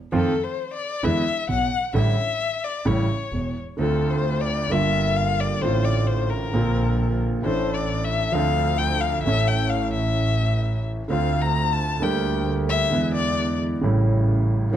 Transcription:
0.12 0.31 F2 medium
0.12 0.31 D#3 medium
0.12 0.31 F3 medium
0.12 0.31 A3 medium
0.12 0.31 C4 medium
0.12 0.31 F4 medium
0.12 0.45 A4 medium
0.44 0.73 C5 medium
0.74 1.05 D5 medium
1.03 1.22 E2 medium
1.03 1.22 D3 medium
1.03 1.22 E3 medium
1.03 1.22 G#3 medium
1.03 1.22 B3 medium
1.03 1.22 E4 medium
1.03 1.49 E5 loud
1.48 1.67 B1 medium
1.48 1.68 B1 medium
1.48 1.67 B2 medium
1.48 1.92 F#5 loud
1.94 2.13 A1 medium
1.94 2.13 A2 medium
1.94 2.13 D3 medium
1.94 2.13 G3 medium
1.94 2.13 A3 medium
1.94 2.13 E4 medium
1.94 2.66 E5 loud
2.64 2.88 D5 medium
2.85 3.05 A1 medium
2.85 3.05 A2 medium
2.85 3.05 C#3 medium
2.85 3.05 G3 medium
2.85 3.05 A3 medium
2.85 3.05 E4 medium
2.85 3.56 C#5 medium
3.32 3.52 E1 medium
3.32 3.52 E2 soft
3.77 4.66 D2 medium
3.77 3.78 D3 medium
3.77 4.66 D3 medium
3.77 4.66 A3 medium
3.77 4.67 C4 medium
3.77 4.11 A4 medium
3.81 4.68 F4 medium
4.10 4.42 C5 medium
4.41 4.73 D5 medium
4.69 5.58 G1 medium
4.69 5.58 G2 medium
4.69 5.57 D3 medium
4.69 5.58 G3 medium
4.69 5.58 A#3 medium
4.69 5.18 E5 loud
4.73 5.59 F4 medium
5.16 5.42 F5 loud
5.40 5.63 D5 medium
5.61 6.49 A1 medium
5.61 6.50 A1 medium
5.61 6.49 A2 medium
5.61 6.48 D3 medium
5.61 6.49 A3 medium
5.61 6.50 C4 soft
5.61 6.50 F4 medium
5.61 5.86 C5 loud
5.85 6.09 D5 medium
6.07 6.31 C5 medium
6.30 7.21 A#4 medium
6.52 7.40 A#1 medium
6.52 7.40 A#2 medium
6.52 7.39 D3 medium
6.52 7.40 A#3 medium
6.52 7.40 C4 medium
6.56 7.41 F4 medium
7.42 8.30 A1 medium
7.42 8.31 A1 medium
7.42 8.31 A2 medium
7.42 8.30 E3 medium
7.42 8.30 A3 medium
7.42 8.31 D4 medium
7.42 7.75 C5 loud
7.46 8.32 A4 medium
7.74 8.06 D5 medium
8.04 8.34 E5 medium
8.32 9.22 D2 medium
8.32 9.21 D3 medium
8.32 9.20 F3 medium
8.32 9.21 C4 medium
8.32 9.22 D4 medium
8.32 8.80 F5 loud
8.36 9.22 A4 medium
8.78 9.02 G5 loud
9.01 9.23 F5 medium
9.23 11.01 A1 medium
9.23 11.01 A2 medium
9.23 11.00 E3 medium
9.23 11.01 A3 medium
9.23 11.01 C#4 medium
9.23 9.49 E5 loud
9.28 11.02 A4 medium
9.47 9.71 G5 loud
9.70 9.93 F5 medium
9.93 10.82 E5 medium
11.08 11.97 D2 medium
11.08 11.10 D3 medium
11.08 11.97 D3 medium
11.08 11.97 A3 medium
11.08 11.98 C4 medium
11.08 11.43 F5 medium
11.12 11.98 F4 medium
11.41 11.74 A#5 loud
11.72 12.04 A5 loud
12.00 12.88 D2 medium
12.00 12.89 D2 medium
12.00 12.01 D3 medium
12.00 12.89 D3 medium
12.00 12.88 G3 medium
12.00 12.89 A#3 medium
12.00 12.48 G5 medium
12.04 12.90 G4 medium
12.69 13.12 E5 loud
12.90 13.78 E2 medium
12.90 13.79 E2 medium
12.90 13.77 D3 medium
12.90 13.78 E3 medium
12.90 13.78 G#3 medium
12.90 13.79 B3 medium
12.90 13.79 E4 medium
13.14 13.57 D5 loud
13.81 14.69 A1 medium
13.81 14.69 A2 medium
13.81 14.68 C#3 medium
13.81 14.68 G3 medium
13.81 14.69 A3 medium
13.85 14.70 E4 medium
14.71 14.77 F2 medium
14.71 14.77 D#3 medium
14.71 14.77 F3 medium
14.71 14.77 A3 medium

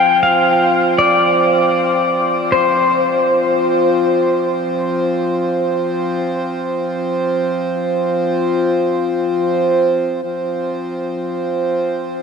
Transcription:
0.00 10.21 F3 medium
0.00 10.21 C4 medium
0.00 0.22 G5 loud
0.23 1.02 F5 medium
0.98 2.58 D5 medium
2.52 3.65 C5 medium
10.22 12.22 F3 medium
10.22 12.22 C4 medium

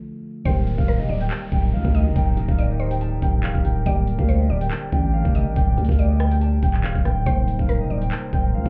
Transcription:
0.00 0.41 D3 medium
0.00 0.41 F3 medium
0.00 0.42 A3 medium
0.00 0.42 F4 medium
0.00 0.43 A4 medium
0.44 0.77 D1 loud
0.44 3.81 D#3 medium
0.44 3.82 G3 medium
0.44 3.82 A#3 medium
0.44 3.83 D#4 medium
0.44 7.23 G4 medium
0.44 3.83 G4 medium
0.44 7.23 A#4 medium
0.44 3.83 A#4 medium
0.44 0.86 C5 loud
0.44 0.76 G5 loud
0.44 8.69 G5 loud
0.44 kick loud
0.44 closed hi-hat medium
0.44 downlifter medium
0.67 closed hi-hat medium
0.78 1.01 D1 loud
0.78 0.95 F5 medium
0.78 kick loud
0.88 1.08 A#4 medium
0.88 closed hi-hat medium
0.99 1.09 F1 loud
0.99 1.17 D#5 loud
1.09 1.30 D1 loud
1.09 1.90 D5 medium
1.21 1.29 G5 medium
1.21 closed hi-hat medium
1.31 1.48 A5 medium
1.31 clap loud
1.31 closed hi-hat medium
1.52 1.75 D1 loud
1.52 1.69 G5 medium
1.52 kick loud
1.73 1.84 D2 loud
1.73 1.90 F5 medium
1.85 2.07 D2 loud
1.85 kick loud
1.95 2.15 D#5 medium
1.95 closed hi-hat medium
2.06 2.15 F1 loud
2.16 2.36 D1 loud
2.16 2.47 G5 loud
2.16 kick loud
2.16 closed hi-hat medium
2.37 2.48 D1 loud
2.37 closed hi-hat medium
2.48 3.19 D1 loud
2.48 2.65 F5 medium
2.48 kick loud
2.58 2.79 D5 medium
2.58 closed hi-hat medium
2.70 2.87 D#5 medium
2.80 3.82 C5 medium
2.91 2.99 G5 medium
2.91 closed hi-hat medium
3.01 3.18 A5 medium
3.01 closed hi-hat medium
3.22 3.43 D1 loud
3.22 3.39 G5 medium
3.22 kick loud
3.22 closed hi-hat medium
3.43 3.54 D1 loud
3.43 3.61 F5 medium
3.43 clap loud
3.55 3.64 D1 loud
3.55 kick loud
3.65 3.85 D1 loud
3.65 3.82 G5 medium
3.65 closed hi-hat medium
3.85 4.17 D1 loud
3.85 7.22 D3 medium
3.85 7.22 G3 medium
3.85 7.23 A#3 medium
3.85 7.23 D4 medium
3.85 7.23 G4 medium
3.85 7.24 A#4 medium
3.85 4.26 D5 loud
3.85 4.17 G5 loud
3.85 kick loud
3.85 closed hi-hat medium
4.07 closed hi-hat medium
4.18 4.49 D2 loud
4.18 4.35 F5 medium
4.18 kick loud
4.29 4.49 C5 medium
4.29 closed hi-hat medium
4.40 4.57 D#5 medium
4.50 4.70 D1 loud
4.50 5.31 D5 medium
4.61 4.69 G5 medium
4.61 closed hi-hat medium
4.71 4.88 A5 medium
4.71 clap loud
4.71 closed hi-hat medium
4.92 5.24 A1 loud
4.92 5.10 G5 medium
4.92 kick loud
5.13 5.31 F5 medium
5.25 5.48 F1 loud
5.25 kick loud
5.35 5.55 D#5 medium
5.35 closed hi-hat medium
5.46 5.56 A1 loud
5.56 5.77 D1 loud
5.56 5.87 G5 loud
5.56 kick loud
5.56 closed hi-hat medium
5.78 5.88 D2 loud
5.78 closed hi-hat medium
5.85 closed hi-hat medium
5.89 6.60 D2 loud
5.89 6.06 F5 medium
5.89 kick loud
5.89 closed hi-hat medium
5.99 6.19 D5 medium
5.99 closed hi-hat medium
6.10 6.27 D#5 medium
6.20 7.22 G5 medium
6.20 cross-stick loud
6.31 6.40 G5 medium
6.31 closed hi-hat medium
6.41 6.58 A5 medium
6.41 closed hi-hat medium
6.63 6.83 D1 loud
6.63 6.80 G5 medium
6.63 kick loud
6.63 closed hi-hat medium
6.74 clap medium
6.84 6.95 D1 loud
6.84 7.01 F5 medium
6.84 clap loud
6.95 7.05 D1 loud
6.95 kick loud
7.05 7.26 D1 loud
7.05 7.22 G5 medium
7.05 cross-stick medium
7.05 closed hi-hat medium
7.25 7.58 D1 loud
7.25 8.69 C3 medium
7.25 8.69 G3 medium
7.25 8.69 A#3 medium
7.25 8.69 D#4 medium
7.25 8.69 A#4 medium
7.25 7.66 C5 loud
7.25 8.69 C5 medium
7.25 7.57 G5 loud
7.25 kick loud
7.25 closed hi-hat medium
7.48 closed hi-hat medium
7.59 7.82 D1 loud
7.59 7.76 F5 medium
7.59 kick loud
7.69 7.89 A#4 loud
7.69 closed hi-hat medium
7.80 7.90 F1 loud
7.80 7.98 D#5 medium
7.90 8.11 D1 loud
7.90 8.69 D5 medium
8.02 8.10 G5 medium
8.02 closed hi-hat medium
8.12 8.29 A5 medium
8.12 clap loud
8.12 closed hi-hat medium
8.33 8.56 D1 loud
8.33 8.50 G5 medium
8.33 kick loud
8.54 8.65 D2 loud
8.54 8.69 F5 medium
8.66 8.69 D2 loud
8.66 kick loud

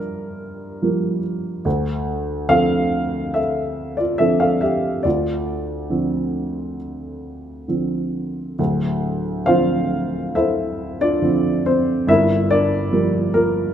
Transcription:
0.00 1.61 G2 medium
0.00 0.82 F3 soft
0.00 0.83 G3 soft
0.00 0.83 A#3 soft
0.00 1.20 D4 soft
0.00 1.68 F4 medium
0.00 1.67 G4 medium
0.00 1.19 A#4 medium
0.00 1.67 D5 medium
0.00 1.67 E5 medium
0.82 1.63 F3 soft
0.82 1.63 G3 soft
0.82 1.63 A#3 soft
1.65 5.01 D2 medium
2.48 3.32 D3 soft
2.48 3.32 F3 soft
2.48 3.32 C4 medium
2.48 3.32 A4 medium
2.48 3.38 F5 medium
3.34 3.95 A4 medium
3.34 4.01 E5 medium
3.97 4.19 F4 soft
3.97 4.20 D5 medium
4.18 5.02 D3 soft
4.18 5.02 F3 soft
4.18 5.03 C4 soft
4.18 4.40 A4 medium
4.18 4.41 E5 medium
4.40 4.61 A4 medium
4.40 4.61 F5 medium
4.61 5.02 G4 medium
4.61 5.01 E5 medium
5.03 8.54 D2 medium
5.03 7.65 F4 medium
5.03 7.64 D5 medium
5.90 6.76 D3 soft
5.90 6.76 F3 soft
5.90 6.76 C4 soft
7.68 8.56 D3 soft
7.68 8.56 F3 soft
7.68 8.56 C4 soft
8.59 12.05 D1 medium
8.59 12.05 D2 medium
9.46 10.33 D3 soft
9.46 10.33 F3 soft
9.46 10.33 C4 soft
9.46 10.31 F4 medium
9.46 10.31 C5 medium
9.46 10.31 F5 medium
10.35 10.97 E4 medium
10.35 10.97 A4 medium
10.35 10.97 C5 medium
10.35 11.03 E5 medium
11.01 11.62 D4 medium
11.01 11.62 F4 medium
11.01 11.68 D5 medium
11.21 12.05 D3 soft
11.21 12.06 F3 soft
11.21 11.65 C4 soft
11.66 12.06 C4 medium
11.66 12.10 C5 medium
12.07 13.74 G1 medium
12.07 13.74 G2 medium
12.07 12.48 E4 medium
12.07 12.48 A#4 medium
12.07 12.48 E5 medium
12.51 13.31 D4 medium
12.51 13.31 A#4 medium
12.51 13.37 D5 medium
12.92 13.74 F3 soft
12.92 13.74 G3 soft
12.92 13.33 A#3 medium
13.34 13.74 A#3 medium
13.34 13.74 F4 soft
13.34 13.74 A#4 medium

